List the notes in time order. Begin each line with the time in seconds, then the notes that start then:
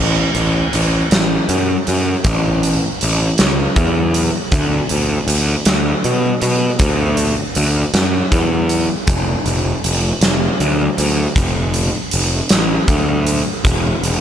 Already playing: A1
0.35 A1, closed hi-hat
0.73 A1, closed hi-hat
1.11 A1, snare, closed hi-hat
1.49 F#2, closed hi-hat
1.87 F#2, closed hi-hat
2.24 A1, kick, closed hi-hat
2.63 closed hi-hat
3.01 A1, closed hi-hat
3.38 C#2, snare, closed hi-hat
3.76 E2, kick, closed hi-hat
4.14 closed hi-hat
4.52 D2, kick, closed hi-hat
4.89 D2, closed hi-hat
5.28 D2, closed hi-hat
5.65 D2, snare, closed hi-hat
6.04 B2, closed hi-hat
6.42 B2, closed hi-hat
6.79 D2, kick, closed hi-hat
7.17 closed hi-hat
7.55 D2, closed hi-hat
7.94 F#2, snare, closed hi-hat
8.32 E2, kick, closed hi-hat
8.69 closed hi-hat
9.07 F1, kick, closed hi-hat
9.46 F1, closed hi-hat
9.84 F1, closed hi-hat
10.21 F1, snare, closed hi-hat
10.60 D2, closed hi-hat
10.98 D2, closed hi-hat
11.36 F1, kick, closed hi-hat
11.74 closed hi-hat
12.11 F1, closed hi-hat
12.49 A1, snare, closed hi-hat
12.88 D2, kick, closed hi-hat
13.27 closed hi-hat
13.65 E1, kick, closed hi-hat
14.03 E1, closed hi-hat